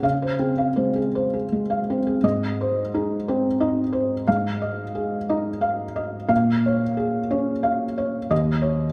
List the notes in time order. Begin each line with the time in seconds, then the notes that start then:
0.03 C#3 F5
0.22 C5
0.39 C4 G#4
0.58 F5
0.76 G#3 C5
0.96 G#4
1.15 C5
1.33 G#4
1.52 G#3
1.70 F5
1.90 C4 C5
2.07 G#4
2.23 G#2 D#5
2.61 C5
2.94 D#4 G#4
3.28 C4 C5
3.60 D#4 D#5
3.93 C5
4.28 G#2 F5
4.62 D#5
4.95 G#4
5.29 D#4 D#5
5.61 F5
5.96 D#5
6.29 A#2 F5
6.66 C#5
6.97 G#4
7.31 C#4 C#5
7.63 F5
7.98 C#5
8.30 D#2 D#5
8.62 C#5